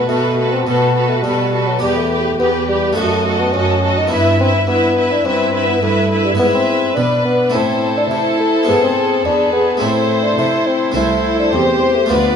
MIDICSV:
0, 0, Header, 1, 7, 480
1, 0, Start_track
1, 0, Key_signature, 1, "minor"
1, 0, Tempo, 572519
1, 1523, Time_signature, 4, 2, 24, 8
1, 5364, Key_signature, 0, "minor"
1, 10362, End_track
2, 0, Start_track
2, 0, Title_t, "Violin section"
2, 0, Program_c, 0, 48
2, 78, Note_on_c, 0, 71, 45
2, 305, Note_off_c, 0, 71, 0
2, 315, Note_on_c, 0, 71, 41
2, 548, Note_off_c, 0, 71, 0
2, 558, Note_on_c, 0, 71, 39
2, 782, Note_off_c, 0, 71, 0
2, 792, Note_on_c, 0, 71, 42
2, 1032, Note_off_c, 0, 71, 0
2, 1046, Note_on_c, 0, 71, 41
2, 1275, Note_off_c, 0, 71, 0
2, 1285, Note_on_c, 0, 71, 36
2, 1520, Note_off_c, 0, 71, 0
2, 1529, Note_on_c, 0, 71, 50
2, 1760, Note_off_c, 0, 71, 0
2, 1771, Note_on_c, 0, 71, 40
2, 1994, Note_off_c, 0, 71, 0
2, 2005, Note_on_c, 0, 71, 44
2, 2242, Note_off_c, 0, 71, 0
2, 2256, Note_on_c, 0, 71, 43
2, 2488, Note_off_c, 0, 71, 0
2, 2493, Note_on_c, 0, 75, 43
2, 2728, Note_off_c, 0, 75, 0
2, 2741, Note_on_c, 0, 75, 43
2, 2972, Note_off_c, 0, 75, 0
2, 2983, Note_on_c, 0, 75, 44
2, 3209, Note_off_c, 0, 75, 0
2, 3219, Note_on_c, 0, 75, 40
2, 3447, Note_on_c, 0, 76, 50
2, 3451, Note_off_c, 0, 75, 0
2, 3682, Note_off_c, 0, 76, 0
2, 3692, Note_on_c, 0, 76, 43
2, 3917, Note_off_c, 0, 76, 0
2, 3927, Note_on_c, 0, 76, 45
2, 4164, Note_off_c, 0, 76, 0
2, 4173, Note_on_c, 0, 76, 43
2, 4394, Note_off_c, 0, 76, 0
2, 4404, Note_on_c, 0, 76, 45
2, 4633, Note_off_c, 0, 76, 0
2, 4643, Note_on_c, 0, 76, 46
2, 4880, Note_off_c, 0, 76, 0
2, 4896, Note_on_c, 0, 76, 46
2, 5114, Note_off_c, 0, 76, 0
2, 5124, Note_on_c, 0, 76, 40
2, 5358, Note_off_c, 0, 76, 0
2, 5372, Note_on_c, 0, 76, 53
2, 5814, Note_off_c, 0, 76, 0
2, 5856, Note_on_c, 0, 71, 48
2, 6324, Note_on_c, 0, 72, 48
2, 6330, Note_off_c, 0, 71, 0
2, 6796, Note_off_c, 0, 72, 0
2, 6806, Note_on_c, 0, 72, 47
2, 7738, Note_off_c, 0, 72, 0
2, 7750, Note_on_c, 0, 71, 45
2, 8219, Note_off_c, 0, 71, 0
2, 8234, Note_on_c, 0, 69, 50
2, 9171, Note_off_c, 0, 69, 0
2, 9181, Note_on_c, 0, 69, 50
2, 9658, Note_off_c, 0, 69, 0
2, 9670, Note_on_c, 0, 72, 51
2, 10152, Note_off_c, 0, 72, 0
2, 10153, Note_on_c, 0, 74, 52
2, 10362, Note_off_c, 0, 74, 0
2, 10362, End_track
3, 0, Start_track
3, 0, Title_t, "Violin section"
3, 0, Program_c, 1, 48
3, 81, Note_on_c, 1, 69, 39
3, 303, Note_off_c, 1, 69, 0
3, 313, Note_on_c, 1, 69, 40
3, 552, Note_off_c, 1, 69, 0
3, 562, Note_on_c, 1, 69, 45
3, 797, Note_off_c, 1, 69, 0
3, 814, Note_on_c, 1, 69, 36
3, 1041, Note_off_c, 1, 69, 0
3, 1051, Note_on_c, 1, 69, 42
3, 1275, Note_off_c, 1, 69, 0
3, 1285, Note_on_c, 1, 69, 43
3, 1520, Note_off_c, 1, 69, 0
3, 1528, Note_on_c, 1, 67, 49
3, 1760, Note_off_c, 1, 67, 0
3, 1770, Note_on_c, 1, 67, 39
3, 1998, Note_off_c, 1, 67, 0
3, 2008, Note_on_c, 1, 67, 42
3, 2232, Note_off_c, 1, 67, 0
3, 2242, Note_on_c, 1, 67, 41
3, 2479, Note_on_c, 1, 69, 44
3, 2481, Note_off_c, 1, 67, 0
3, 2715, Note_off_c, 1, 69, 0
3, 2725, Note_on_c, 1, 69, 39
3, 2954, Note_off_c, 1, 69, 0
3, 2964, Note_on_c, 1, 69, 43
3, 3204, Note_off_c, 1, 69, 0
3, 3213, Note_on_c, 1, 69, 47
3, 3448, Note_off_c, 1, 69, 0
3, 3452, Note_on_c, 1, 71, 46
3, 3678, Note_off_c, 1, 71, 0
3, 3688, Note_on_c, 1, 71, 39
3, 3915, Note_off_c, 1, 71, 0
3, 3925, Note_on_c, 1, 71, 43
3, 4153, Note_off_c, 1, 71, 0
3, 4163, Note_on_c, 1, 71, 46
3, 4399, Note_off_c, 1, 71, 0
3, 4409, Note_on_c, 1, 71, 46
3, 4624, Note_off_c, 1, 71, 0
3, 4634, Note_on_c, 1, 71, 46
3, 4863, Note_off_c, 1, 71, 0
3, 4873, Note_on_c, 1, 71, 49
3, 5107, Note_off_c, 1, 71, 0
3, 5117, Note_on_c, 1, 71, 47
3, 5355, Note_off_c, 1, 71, 0
3, 5365, Note_on_c, 1, 71, 46
3, 6290, Note_off_c, 1, 71, 0
3, 6317, Note_on_c, 1, 69, 52
3, 8226, Note_on_c, 1, 72, 51
3, 8227, Note_off_c, 1, 69, 0
3, 9183, Note_off_c, 1, 72, 0
3, 9193, Note_on_c, 1, 72, 53
3, 10136, Note_off_c, 1, 72, 0
3, 10165, Note_on_c, 1, 71, 45
3, 10362, Note_off_c, 1, 71, 0
3, 10362, End_track
4, 0, Start_track
4, 0, Title_t, "Viola section"
4, 0, Program_c, 2, 48
4, 79, Note_on_c, 2, 66, 42
4, 312, Note_off_c, 2, 66, 0
4, 322, Note_on_c, 2, 66, 36
4, 553, Note_off_c, 2, 66, 0
4, 563, Note_on_c, 2, 66, 40
4, 793, Note_off_c, 2, 66, 0
4, 803, Note_on_c, 2, 66, 39
4, 1033, Note_off_c, 2, 66, 0
4, 1043, Note_on_c, 2, 66, 37
4, 1269, Note_off_c, 2, 66, 0
4, 1279, Note_on_c, 2, 66, 38
4, 1517, Note_off_c, 2, 66, 0
4, 1521, Note_on_c, 2, 67, 45
4, 1750, Note_off_c, 2, 67, 0
4, 1760, Note_on_c, 2, 67, 41
4, 1985, Note_off_c, 2, 67, 0
4, 1995, Note_on_c, 2, 67, 44
4, 2231, Note_off_c, 2, 67, 0
4, 2241, Note_on_c, 2, 67, 42
4, 2480, Note_off_c, 2, 67, 0
4, 2481, Note_on_c, 2, 66, 44
4, 2717, Note_off_c, 2, 66, 0
4, 2727, Note_on_c, 2, 66, 42
4, 2966, Note_off_c, 2, 66, 0
4, 2975, Note_on_c, 2, 66, 44
4, 3202, Note_off_c, 2, 66, 0
4, 3212, Note_on_c, 2, 66, 41
4, 3447, Note_off_c, 2, 66, 0
4, 3453, Note_on_c, 2, 64, 44
4, 3683, Note_off_c, 2, 64, 0
4, 3693, Note_on_c, 2, 64, 45
4, 3916, Note_off_c, 2, 64, 0
4, 3926, Note_on_c, 2, 64, 51
4, 4160, Note_off_c, 2, 64, 0
4, 4170, Note_on_c, 2, 64, 40
4, 4401, Note_off_c, 2, 64, 0
4, 4411, Note_on_c, 2, 64, 43
4, 4635, Note_off_c, 2, 64, 0
4, 4645, Note_on_c, 2, 64, 39
4, 4867, Note_off_c, 2, 64, 0
4, 4877, Note_on_c, 2, 64, 45
4, 5107, Note_off_c, 2, 64, 0
4, 5117, Note_on_c, 2, 64, 45
4, 5348, Note_off_c, 2, 64, 0
4, 5359, Note_on_c, 2, 64, 46
4, 5807, Note_off_c, 2, 64, 0
4, 5841, Note_on_c, 2, 62, 49
4, 6312, Note_off_c, 2, 62, 0
4, 6316, Note_on_c, 2, 64, 44
4, 6781, Note_off_c, 2, 64, 0
4, 6791, Note_on_c, 2, 64, 48
4, 7264, Note_off_c, 2, 64, 0
4, 7273, Note_on_c, 2, 68, 47
4, 7740, Note_off_c, 2, 68, 0
4, 7750, Note_on_c, 2, 68, 50
4, 8219, Note_off_c, 2, 68, 0
4, 8230, Note_on_c, 2, 64, 47
4, 8700, Note_off_c, 2, 64, 0
4, 8710, Note_on_c, 2, 64, 50
4, 9653, Note_off_c, 2, 64, 0
4, 9674, Note_on_c, 2, 67, 49
4, 10154, Note_off_c, 2, 67, 0
4, 10158, Note_on_c, 2, 65, 45
4, 10362, Note_off_c, 2, 65, 0
4, 10362, End_track
5, 0, Start_track
5, 0, Title_t, "Bassoon"
5, 0, Program_c, 3, 70
5, 70, Note_on_c, 3, 57, 61
5, 430, Note_on_c, 3, 60, 54
5, 443, Note_off_c, 3, 57, 0
5, 560, Note_on_c, 3, 59, 52
5, 573, Note_off_c, 3, 60, 0
5, 911, Note_on_c, 3, 57, 59
5, 924, Note_off_c, 3, 59, 0
5, 1029, Note_on_c, 3, 55, 51
5, 1041, Note_off_c, 3, 57, 0
5, 1398, Note_on_c, 3, 54, 59
5, 1410, Note_off_c, 3, 55, 0
5, 1519, Note_off_c, 3, 54, 0
5, 1524, Note_on_c, 3, 55, 67
5, 1638, Note_off_c, 3, 55, 0
5, 1643, Note_on_c, 3, 57, 61
5, 1999, Note_off_c, 3, 57, 0
5, 2008, Note_on_c, 3, 59, 67
5, 2116, Note_off_c, 3, 59, 0
5, 2247, Note_on_c, 3, 55, 64
5, 2476, Note_off_c, 3, 55, 0
5, 2481, Note_on_c, 3, 57, 56
5, 2848, Note_on_c, 3, 59, 62
5, 2860, Note_off_c, 3, 57, 0
5, 2959, Note_on_c, 3, 61, 60
5, 2972, Note_off_c, 3, 59, 0
5, 3331, Note_on_c, 3, 63, 68
5, 3343, Note_off_c, 3, 61, 0
5, 3445, Note_on_c, 3, 64, 72
5, 3458, Note_off_c, 3, 63, 0
5, 3685, Note_off_c, 3, 64, 0
5, 3690, Note_on_c, 3, 60, 62
5, 3798, Note_off_c, 3, 60, 0
5, 3922, Note_on_c, 3, 59, 64
5, 4292, Note_on_c, 3, 62, 65
5, 4305, Note_off_c, 3, 59, 0
5, 4404, Note_on_c, 3, 60, 58
5, 4417, Note_off_c, 3, 62, 0
5, 4747, Note_off_c, 3, 60, 0
5, 4752, Note_on_c, 3, 59, 67
5, 4875, Note_off_c, 3, 59, 0
5, 4880, Note_on_c, 3, 57, 58
5, 5234, Note_off_c, 3, 57, 0
5, 5238, Note_on_c, 3, 55, 60
5, 5293, Note_off_c, 3, 55, 0
5, 5359, Note_on_c, 3, 59, 76
5, 5414, Note_off_c, 3, 59, 0
5, 5484, Note_on_c, 3, 60, 68
5, 5829, Note_on_c, 3, 62, 76
5, 5842, Note_off_c, 3, 60, 0
5, 6071, Note_off_c, 3, 62, 0
5, 6076, Note_on_c, 3, 59, 62
5, 6311, Note_off_c, 3, 59, 0
5, 6316, Note_on_c, 3, 60, 68
5, 6670, Note_off_c, 3, 60, 0
5, 6686, Note_on_c, 3, 62, 66
5, 6739, Note_off_c, 3, 62, 0
5, 6788, Note_on_c, 3, 64, 57
5, 7028, Note_off_c, 3, 64, 0
5, 7042, Note_on_c, 3, 57, 68
5, 7280, Note_on_c, 3, 59, 78
5, 7293, Note_off_c, 3, 57, 0
5, 7396, Note_off_c, 3, 59, 0
5, 7401, Note_on_c, 3, 60, 70
5, 7749, Note_off_c, 3, 60, 0
5, 7756, Note_on_c, 3, 62, 70
5, 7980, Note_off_c, 3, 62, 0
5, 7985, Note_on_c, 3, 59, 67
5, 8213, Note_off_c, 3, 59, 0
5, 8218, Note_on_c, 3, 60, 59
5, 8579, Note_on_c, 3, 62, 62
5, 8591, Note_off_c, 3, 60, 0
5, 8700, Note_off_c, 3, 62, 0
5, 8706, Note_on_c, 3, 64, 60
5, 8944, Note_on_c, 3, 60, 68
5, 8957, Note_off_c, 3, 64, 0
5, 9187, Note_off_c, 3, 60, 0
5, 9192, Note_on_c, 3, 64, 75
5, 9545, Note_off_c, 3, 64, 0
5, 9552, Note_on_c, 3, 62, 58
5, 9656, Note_off_c, 3, 62, 0
5, 9661, Note_on_c, 3, 60, 73
5, 10020, Note_on_c, 3, 57, 59
5, 10032, Note_off_c, 3, 60, 0
5, 10138, Note_off_c, 3, 57, 0
5, 10143, Note_on_c, 3, 59, 64
5, 10362, Note_off_c, 3, 59, 0
5, 10362, End_track
6, 0, Start_track
6, 0, Title_t, "Harpsichord"
6, 0, Program_c, 4, 6
6, 0, Note_on_c, 4, 57, 35
6, 0, Note_on_c, 4, 59, 32
6, 0, Note_on_c, 4, 66, 31
6, 77, Note_on_c, 4, 47, 31
6, 477, Note_off_c, 4, 47, 0
6, 560, Note_on_c, 4, 47, 41
6, 959, Note_off_c, 4, 47, 0
6, 1040, Note_on_c, 4, 47, 39
6, 1440, Note_off_c, 4, 47, 0
6, 1468, Note_off_c, 4, 57, 0
6, 1474, Note_off_c, 4, 59, 0
6, 1481, Note_off_c, 4, 66, 0
6, 1500, Note_on_c, 4, 59, 34
6, 1509, Note_on_c, 4, 67, 34
6, 1525, Note_on_c, 4, 40, 38
6, 1926, Note_off_c, 4, 40, 0
6, 2013, Note_on_c, 4, 40, 36
6, 2409, Note_off_c, 4, 40, 0
6, 2448, Note_off_c, 4, 59, 0
6, 2452, Note_off_c, 4, 67, 0
6, 2455, Note_on_c, 4, 57, 36
6, 2470, Note_on_c, 4, 63, 37
6, 2479, Note_on_c, 4, 66, 38
6, 2493, Note_on_c, 4, 42, 44
6, 2892, Note_off_c, 4, 42, 0
6, 2968, Note_on_c, 4, 42, 41
6, 3369, Note_off_c, 4, 42, 0
6, 3406, Note_off_c, 4, 57, 0
6, 3414, Note_off_c, 4, 63, 0
6, 3414, Note_on_c, 4, 59, 37
6, 3418, Note_off_c, 4, 66, 0
6, 3425, Note_on_c, 4, 64, 38
6, 3452, Note_on_c, 4, 43, 41
6, 3849, Note_off_c, 4, 43, 0
6, 3918, Note_on_c, 4, 43, 38
6, 4322, Note_off_c, 4, 43, 0
6, 4403, Note_on_c, 4, 43, 44
6, 4803, Note_off_c, 4, 43, 0
6, 4887, Note_on_c, 4, 43, 43
6, 5283, Note_off_c, 4, 43, 0
6, 5311, Note_off_c, 4, 59, 0
6, 5317, Note_off_c, 4, 64, 0
6, 5323, Note_on_c, 4, 59, 38
6, 5339, Note_on_c, 4, 64, 41
6, 5360, Note_on_c, 4, 44, 45
6, 5808, Note_off_c, 4, 44, 0
6, 5844, Note_on_c, 4, 47, 38
6, 6273, Note_off_c, 4, 59, 0
6, 6281, Note_off_c, 4, 64, 0
6, 6285, Note_on_c, 4, 57, 40
6, 6290, Note_off_c, 4, 47, 0
6, 6294, Note_on_c, 4, 64, 43
6, 6318, Note_on_c, 4, 45, 45
6, 6765, Note_off_c, 4, 45, 0
6, 6801, Note_on_c, 4, 48, 43
6, 7230, Note_off_c, 4, 57, 0
6, 7235, Note_off_c, 4, 64, 0
6, 7239, Note_on_c, 4, 59, 42
6, 7245, Note_off_c, 4, 48, 0
6, 7251, Note_on_c, 4, 64, 40
6, 7276, Note_on_c, 4, 44, 41
6, 7720, Note_off_c, 4, 44, 0
6, 7758, Note_on_c, 4, 40, 41
6, 8182, Note_off_c, 4, 59, 0
6, 8188, Note_off_c, 4, 64, 0
6, 8194, Note_on_c, 4, 57, 39
6, 8199, Note_off_c, 4, 40, 0
6, 8208, Note_on_c, 4, 60, 40
6, 8220, Note_on_c, 4, 64, 40
6, 8229, Note_on_c, 4, 45, 47
6, 8675, Note_off_c, 4, 45, 0
6, 8710, Note_on_c, 4, 48, 44
6, 9142, Note_off_c, 4, 57, 0
6, 9149, Note_off_c, 4, 60, 0
6, 9152, Note_on_c, 4, 57, 36
6, 9155, Note_off_c, 4, 64, 0
6, 9157, Note_off_c, 4, 48, 0
6, 9162, Note_on_c, 4, 60, 40
6, 9173, Note_on_c, 4, 64, 40
6, 9187, Note_on_c, 4, 36, 43
6, 9637, Note_off_c, 4, 36, 0
6, 9668, Note_on_c, 4, 40, 40
6, 10102, Note_off_c, 4, 57, 0
6, 10110, Note_off_c, 4, 60, 0
6, 10112, Note_on_c, 4, 57, 38
6, 10116, Note_off_c, 4, 64, 0
6, 10118, Note_off_c, 4, 40, 0
6, 10124, Note_on_c, 4, 59, 38
6, 10137, Note_on_c, 4, 65, 39
6, 10150, Note_on_c, 4, 38, 44
6, 10362, Note_off_c, 4, 38, 0
6, 10362, Note_off_c, 4, 57, 0
6, 10362, Note_off_c, 4, 59, 0
6, 10362, Note_off_c, 4, 65, 0
6, 10362, End_track
7, 0, Start_track
7, 0, Title_t, "Cello section"
7, 0, Program_c, 5, 48
7, 68, Note_on_c, 5, 47, 48
7, 497, Note_off_c, 5, 47, 0
7, 556, Note_on_c, 5, 47, 53
7, 982, Note_off_c, 5, 47, 0
7, 1038, Note_on_c, 5, 47, 49
7, 1464, Note_off_c, 5, 47, 0
7, 1519, Note_on_c, 5, 40, 50
7, 1948, Note_off_c, 5, 40, 0
7, 2003, Note_on_c, 5, 40, 50
7, 2430, Note_off_c, 5, 40, 0
7, 2487, Note_on_c, 5, 42, 54
7, 2914, Note_off_c, 5, 42, 0
7, 2966, Note_on_c, 5, 42, 49
7, 3393, Note_off_c, 5, 42, 0
7, 3445, Note_on_c, 5, 43, 51
7, 3870, Note_off_c, 5, 43, 0
7, 3929, Note_on_c, 5, 43, 48
7, 4352, Note_off_c, 5, 43, 0
7, 4401, Note_on_c, 5, 43, 57
7, 4826, Note_off_c, 5, 43, 0
7, 4884, Note_on_c, 5, 43, 51
7, 5306, Note_off_c, 5, 43, 0
7, 5361, Note_on_c, 5, 44, 58
7, 5808, Note_off_c, 5, 44, 0
7, 5837, Note_on_c, 5, 47, 54
7, 6286, Note_off_c, 5, 47, 0
7, 6320, Note_on_c, 5, 45, 62
7, 6765, Note_off_c, 5, 45, 0
7, 6794, Note_on_c, 5, 48, 50
7, 7242, Note_off_c, 5, 48, 0
7, 7271, Note_on_c, 5, 44, 59
7, 7717, Note_off_c, 5, 44, 0
7, 7750, Note_on_c, 5, 40, 55
7, 8195, Note_off_c, 5, 40, 0
7, 8232, Note_on_c, 5, 45, 58
7, 8676, Note_off_c, 5, 45, 0
7, 8711, Note_on_c, 5, 48, 52
7, 9157, Note_off_c, 5, 48, 0
7, 9190, Note_on_c, 5, 36, 61
7, 9638, Note_off_c, 5, 36, 0
7, 9674, Note_on_c, 5, 40, 53
7, 10121, Note_off_c, 5, 40, 0
7, 10157, Note_on_c, 5, 38, 55
7, 10362, Note_off_c, 5, 38, 0
7, 10362, End_track
0, 0, End_of_file